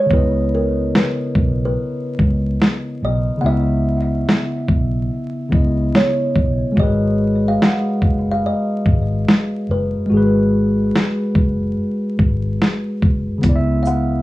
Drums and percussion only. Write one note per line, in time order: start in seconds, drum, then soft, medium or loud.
0.11 kick loud
0.95 snare loud
1.35 kick loud
2.19 kick medium
2.62 snare loud
4.29 snare loud
4.68 kick loud
5.52 kick loud
5.95 snare loud
6.36 kick medium
6.77 kick loud
7.62 snare loud
8.02 kick medium
8.86 kick medium
9.28 snare loud
10.96 snare loud
11.35 kick loud
12.19 kick loud
12.62 snare loud
13.02 kick medium
13.43 kick loud
13.43 closed hi-hat medium
13.85 shaker soft